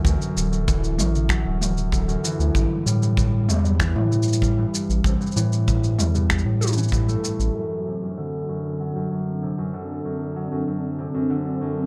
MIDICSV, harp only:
0, 0, Header, 1, 2, 480
1, 0, Start_track
1, 0, Tempo, 625000
1, 38, Time_signature, 4, 2, 24, 8
1, 9110, End_track
2, 0, Start_track
2, 0, Title_t, "Harp"
2, 0, Program_c, 0, 46
2, 0, Note_on_c, 0, 50, 80
2, 0, Note_on_c, 0, 52, 90
2, 0, Note_on_c, 0, 54, 70
2, 36, Note_on_c, 0, 42, 82
2, 266, Note_off_c, 0, 50, 0
2, 275, Note_on_c, 0, 50, 69
2, 316, Note_off_c, 0, 52, 0
2, 316, Note_off_c, 0, 54, 0
2, 387, Note_off_c, 0, 42, 0
2, 396, Note_on_c, 0, 42, 71
2, 517, Note_on_c, 0, 52, 90
2, 747, Note_off_c, 0, 42, 0
2, 756, Note_on_c, 0, 42, 72
2, 996, Note_on_c, 0, 54, 79
2, 1108, Note_off_c, 0, 42, 0
2, 1118, Note_on_c, 0, 42, 66
2, 1228, Note_off_c, 0, 42, 0
2, 1237, Note_on_c, 0, 42, 72
2, 1468, Note_off_c, 0, 50, 0
2, 1477, Note_on_c, 0, 50, 80
2, 1516, Note_off_c, 0, 52, 0
2, 1516, Note_off_c, 0, 54, 0
2, 1587, Note_off_c, 0, 42, 0
2, 1597, Note_on_c, 0, 42, 78
2, 1716, Note_on_c, 0, 52, 97
2, 1956, Note_on_c, 0, 43, 81
2, 1996, Note_off_c, 0, 42, 0
2, 1996, Note_off_c, 0, 50, 0
2, 1996, Note_off_c, 0, 52, 0
2, 2196, Note_on_c, 0, 55, 80
2, 2306, Note_off_c, 0, 43, 0
2, 2315, Note_on_c, 0, 43, 69
2, 2425, Note_off_c, 0, 43, 0
2, 2434, Note_on_c, 0, 43, 76
2, 2675, Note_on_c, 0, 48, 71
2, 2716, Note_off_c, 0, 43, 0
2, 2794, Note_on_c, 0, 43, 79
2, 2836, Note_off_c, 0, 48, 0
2, 2914, Note_on_c, 0, 52, 111
2, 3146, Note_off_c, 0, 43, 0
2, 3155, Note_on_c, 0, 43, 75
2, 3385, Note_off_c, 0, 55, 0
2, 3395, Note_on_c, 0, 55, 79
2, 3507, Note_off_c, 0, 43, 0
2, 3516, Note_on_c, 0, 43, 80
2, 3627, Note_off_c, 0, 43, 0
2, 3636, Note_on_c, 0, 43, 68
2, 3875, Note_on_c, 0, 48, 75
2, 3916, Note_off_c, 0, 43, 0
2, 3916, Note_off_c, 0, 52, 0
2, 3997, Note_on_c, 0, 43, 76
2, 4037, Note_off_c, 0, 48, 0
2, 4117, Note_on_c, 0, 52, 100
2, 4348, Note_off_c, 0, 43, 0
2, 4357, Note_on_c, 0, 43, 71
2, 4588, Note_off_c, 0, 55, 0
2, 4597, Note_on_c, 0, 55, 69
2, 4708, Note_off_c, 0, 43, 0
2, 4718, Note_on_c, 0, 43, 81
2, 4828, Note_off_c, 0, 43, 0
2, 4837, Note_on_c, 0, 43, 82
2, 5187, Note_off_c, 0, 52, 0
2, 5196, Note_on_c, 0, 52, 72
2, 5307, Note_off_c, 0, 43, 0
2, 5316, Note_on_c, 0, 43, 87
2, 5437, Note_on_c, 0, 57, 77
2, 5556, Note_on_c, 0, 45, 72
2, 5596, Note_off_c, 0, 43, 0
2, 5795, Note_on_c, 0, 42, 66
2, 5836, Note_off_c, 0, 45, 0
2, 5836, Note_off_c, 0, 52, 0
2, 5836, Note_off_c, 0, 55, 0
2, 6035, Note_on_c, 0, 48, 58
2, 6076, Note_off_c, 0, 42, 0
2, 6157, Note_on_c, 0, 42, 56
2, 6196, Note_off_c, 0, 48, 0
2, 6276, Note_on_c, 0, 50, 83
2, 6508, Note_off_c, 0, 42, 0
2, 6517, Note_on_c, 0, 42, 56
2, 6756, Note_on_c, 0, 54, 67
2, 6868, Note_off_c, 0, 42, 0
2, 6877, Note_on_c, 0, 42, 63
2, 6988, Note_off_c, 0, 42, 0
2, 6997, Note_on_c, 0, 42, 66
2, 7238, Note_on_c, 0, 48, 66
2, 7276, Note_off_c, 0, 42, 0
2, 7276, Note_off_c, 0, 50, 0
2, 7276, Note_off_c, 0, 54, 0
2, 7357, Note_on_c, 0, 42, 64
2, 7396, Note_off_c, 0, 48, 0
2, 7478, Note_on_c, 0, 50, 79
2, 7708, Note_off_c, 0, 42, 0
2, 7718, Note_on_c, 0, 42, 65
2, 7956, Note_on_c, 0, 54, 60
2, 7994, Note_off_c, 0, 57, 0
2, 8067, Note_off_c, 0, 42, 0
2, 8077, Note_on_c, 0, 42, 58
2, 8188, Note_off_c, 0, 42, 0
2, 8197, Note_on_c, 0, 42, 65
2, 8437, Note_on_c, 0, 48, 61
2, 8476, Note_off_c, 0, 42, 0
2, 8476, Note_off_c, 0, 50, 0
2, 8476, Note_off_c, 0, 54, 0
2, 8558, Note_on_c, 0, 42, 68
2, 8597, Note_off_c, 0, 48, 0
2, 8677, Note_on_c, 0, 50, 91
2, 8908, Note_off_c, 0, 42, 0
2, 8917, Note_on_c, 0, 42, 65
2, 9110, Note_off_c, 0, 42, 0
2, 9110, Note_off_c, 0, 50, 0
2, 9110, End_track
0, 0, End_of_file